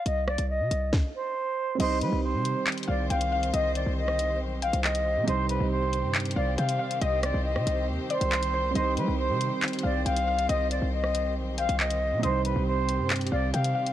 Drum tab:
CC |--------------------------------|x-------------------------------|--------------------------------|--------------------------------|
HH |x-----x-----x-------------------|x---x-------x---xxxx----x-x---x-|x---x-------x-------x-x---x-----|x---x-------x---xxxx----x-x---x-|
CP |--------------------------------|----------------x---------------|------------------------x-------|----------------x---------------|
SD |----r-----------o---------------|--------------------------------|----------r---------------------|--------------------------------|
BD |----------------o---------------|--------------------------------|--------------------------------|--------------------------------|

CC |--------------------------------|--------------------------------|--------------------------------|--------------------------------|
HH |x---x-------x-------x-x---x-----|x---x-------x---xxxx----x-x---x-|x---x-------x-------x-x---x-----|x---x-------x---xxxx----x-x---x-|
CP |------------------------x-------|----------------x---------------|------------------------x-------|----------------x---------------|
SD |----r-----r---------------------|--------------------------------|----------r---------------------|--------------------------------|
BD |--------------------------------|--------------------------------|--------------------------------|--------------------------------|